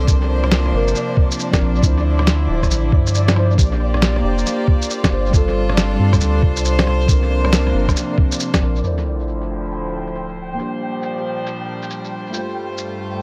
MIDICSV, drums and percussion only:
0, 0, Header, 1, 2, 480
1, 0, Start_track
1, 0, Key_signature, -1, "minor"
1, 0, Tempo, 437956
1, 83, Time_signature, 4, 2, 24, 8
1, 14490, End_track
2, 0, Start_track
2, 0, Title_t, "Drums"
2, 82, Note_on_c, 9, 36, 124
2, 85, Note_on_c, 9, 82, 55
2, 192, Note_off_c, 9, 36, 0
2, 194, Note_off_c, 9, 82, 0
2, 479, Note_on_c, 9, 37, 60
2, 565, Note_on_c, 9, 38, 104
2, 565, Note_on_c, 9, 82, 50
2, 588, Note_off_c, 9, 37, 0
2, 674, Note_off_c, 9, 38, 0
2, 674, Note_off_c, 9, 82, 0
2, 720, Note_on_c, 9, 37, 34
2, 829, Note_off_c, 9, 37, 0
2, 959, Note_on_c, 9, 82, 31
2, 1044, Note_off_c, 9, 82, 0
2, 1044, Note_on_c, 9, 82, 54
2, 1154, Note_off_c, 9, 82, 0
2, 1280, Note_on_c, 9, 36, 110
2, 1390, Note_off_c, 9, 36, 0
2, 1439, Note_on_c, 9, 82, 56
2, 1526, Note_off_c, 9, 82, 0
2, 1526, Note_on_c, 9, 82, 53
2, 1636, Note_off_c, 9, 82, 0
2, 1674, Note_on_c, 9, 36, 67
2, 1682, Note_on_c, 9, 38, 104
2, 1682, Note_on_c, 9, 82, 30
2, 1784, Note_off_c, 9, 36, 0
2, 1791, Note_off_c, 9, 38, 0
2, 1791, Note_off_c, 9, 82, 0
2, 2001, Note_on_c, 9, 36, 117
2, 2006, Note_on_c, 9, 82, 54
2, 2111, Note_off_c, 9, 36, 0
2, 2116, Note_off_c, 9, 82, 0
2, 2402, Note_on_c, 9, 37, 61
2, 2489, Note_on_c, 9, 38, 95
2, 2489, Note_on_c, 9, 82, 52
2, 2511, Note_off_c, 9, 37, 0
2, 2599, Note_off_c, 9, 38, 0
2, 2599, Note_off_c, 9, 82, 0
2, 2876, Note_on_c, 9, 36, 62
2, 2884, Note_on_c, 9, 37, 58
2, 2884, Note_on_c, 9, 82, 30
2, 2968, Note_off_c, 9, 82, 0
2, 2968, Note_on_c, 9, 82, 54
2, 2986, Note_off_c, 9, 36, 0
2, 2994, Note_off_c, 9, 37, 0
2, 3078, Note_off_c, 9, 82, 0
2, 3203, Note_on_c, 9, 36, 106
2, 3313, Note_off_c, 9, 36, 0
2, 3361, Note_on_c, 9, 82, 55
2, 3446, Note_off_c, 9, 82, 0
2, 3446, Note_on_c, 9, 82, 52
2, 3556, Note_off_c, 9, 82, 0
2, 3598, Note_on_c, 9, 38, 108
2, 3598, Note_on_c, 9, 82, 31
2, 3686, Note_on_c, 9, 37, 50
2, 3708, Note_off_c, 9, 38, 0
2, 3708, Note_off_c, 9, 82, 0
2, 3796, Note_off_c, 9, 37, 0
2, 3925, Note_on_c, 9, 36, 115
2, 3929, Note_on_c, 9, 82, 52
2, 4034, Note_off_c, 9, 36, 0
2, 4039, Note_off_c, 9, 82, 0
2, 4320, Note_on_c, 9, 37, 62
2, 4408, Note_on_c, 9, 38, 101
2, 4408, Note_on_c, 9, 82, 49
2, 4429, Note_off_c, 9, 37, 0
2, 4517, Note_off_c, 9, 38, 0
2, 4517, Note_off_c, 9, 82, 0
2, 4561, Note_on_c, 9, 37, 36
2, 4670, Note_off_c, 9, 37, 0
2, 4801, Note_on_c, 9, 82, 30
2, 4891, Note_off_c, 9, 82, 0
2, 4891, Note_on_c, 9, 82, 54
2, 5001, Note_off_c, 9, 82, 0
2, 5124, Note_on_c, 9, 36, 109
2, 5234, Note_off_c, 9, 36, 0
2, 5283, Note_on_c, 9, 82, 53
2, 5371, Note_off_c, 9, 82, 0
2, 5371, Note_on_c, 9, 82, 52
2, 5481, Note_off_c, 9, 82, 0
2, 5517, Note_on_c, 9, 36, 59
2, 5525, Note_on_c, 9, 38, 102
2, 5525, Note_on_c, 9, 82, 29
2, 5627, Note_off_c, 9, 36, 0
2, 5634, Note_off_c, 9, 38, 0
2, 5634, Note_off_c, 9, 82, 0
2, 5843, Note_on_c, 9, 36, 118
2, 5848, Note_on_c, 9, 82, 55
2, 5952, Note_off_c, 9, 36, 0
2, 5957, Note_off_c, 9, 82, 0
2, 6241, Note_on_c, 9, 37, 68
2, 6328, Note_on_c, 9, 38, 94
2, 6328, Note_on_c, 9, 82, 54
2, 6351, Note_off_c, 9, 37, 0
2, 6437, Note_off_c, 9, 38, 0
2, 6437, Note_off_c, 9, 82, 0
2, 6716, Note_on_c, 9, 36, 58
2, 6718, Note_on_c, 9, 37, 65
2, 6718, Note_on_c, 9, 82, 30
2, 6801, Note_off_c, 9, 82, 0
2, 6801, Note_on_c, 9, 82, 55
2, 6825, Note_off_c, 9, 36, 0
2, 6827, Note_off_c, 9, 37, 0
2, 6910, Note_off_c, 9, 82, 0
2, 7042, Note_on_c, 9, 36, 104
2, 7151, Note_off_c, 9, 36, 0
2, 7195, Note_on_c, 9, 82, 59
2, 7286, Note_off_c, 9, 82, 0
2, 7286, Note_on_c, 9, 82, 54
2, 7396, Note_off_c, 9, 82, 0
2, 7440, Note_on_c, 9, 38, 100
2, 7440, Note_on_c, 9, 82, 30
2, 7532, Note_on_c, 9, 37, 52
2, 7550, Note_off_c, 9, 38, 0
2, 7550, Note_off_c, 9, 82, 0
2, 7641, Note_off_c, 9, 37, 0
2, 7762, Note_on_c, 9, 36, 119
2, 7766, Note_on_c, 9, 82, 56
2, 7871, Note_off_c, 9, 36, 0
2, 7876, Note_off_c, 9, 82, 0
2, 8161, Note_on_c, 9, 37, 67
2, 8249, Note_on_c, 9, 38, 99
2, 8249, Note_on_c, 9, 82, 57
2, 8271, Note_off_c, 9, 37, 0
2, 8359, Note_off_c, 9, 38, 0
2, 8359, Note_off_c, 9, 82, 0
2, 8404, Note_on_c, 9, 37, 38
2, 8514, Note_off_c, 9, 37, 0
2, 8636, Note_on_c, 9, 36, 61
2, 8645, Note_on_c, 9, 37, 68
2, 8645, Note_on_c, 9, 82, 32
2, 8728, Note_off_c, 9, 82, 0
2, 8728, Note_on_c, 9, 82, 57
2, 8745, Note_off_c, 9, 36, 0
2, 8754, Note_off_c, 9, 37, 0
2, 8838, Note_off_c, 9, 82, 0
2, 8962, Note_on_c, 9, 36, 106
2, 9071, Note_off_c, 9, 36, 0
2, 9116, Note_on_c, 9, 82, 60
2, 9202, Note_off_c, 9, 82, 0
2, 9202, Note_on_c, 9, 82, 56
2, 9312, Note_off_c, 9, 82, 0
2, 9355, Note_on_c, 9, 36, 62
2, 9358, Note_on_c, 9, 38, 102
2, 9358, Note_on_c, 9, 82, 32
2, 9465, Note_off_c, 9, 36, 0
2, 9467, Note_off_c, 9, 38, 0
2, 9467, Note_off_c, 9, 82, 0
2, 9683, Note_on_c, 9, 82, 52
2, 9793, Note_off_c, 9, 82, 0
2, 10163, Note_on_c, 9, 82, 47
2, 10273, Note_off_c, 9, 82, 0
2, 10641, Note_on_c, 9, 82, 49
2, 10751, Note_off_c, 9, 82, 0
2, 11034, Note_on_c, 9, 82, 52
2, 11124, Note_off_c, 9, 82, 0
2, 11124, Note_on_c, 9, 82, 51
2, 11233, Note_off_c, 9, 82, 0
2, 11273, Note_on_c, 9, 82, 29
2, 11383, Note_off_c, 9, 82, 0
2, 11606, Note_on_c, 9, 82, 53
2, 11715, Note_off_c, 9, 82, 0
2, 12082, Note_on_c, 9, 82, 49
2, 12191, Note_off_c, 9, 82, 0
2, 12562, Note_on_c, 9, 82, 50
2, 12672, Note_off_c, 9, 82, 0
2, 12958, Note_on_c, 9, 82, 55
2, 13044, Note_off_c, 9, 82, 0
2, 13044, Note_on_c, 9, 82, 48
2, 13153, Note_off_c, 9, 82, 0
2, 13198, Note_on_c, 9, 82, 28
2, 13307, Note_off_c, 9, 82, 0
2, 13519, Note_on_c, 9, 82, 51
2, 13628, Note_off_c, 9, 82, 0
2, 14003, Note_on_c, 9, 82, 47
2, 14112, Note_off_c, 9, 82, 0
2, 14490, End_track
0, 0, End_of_file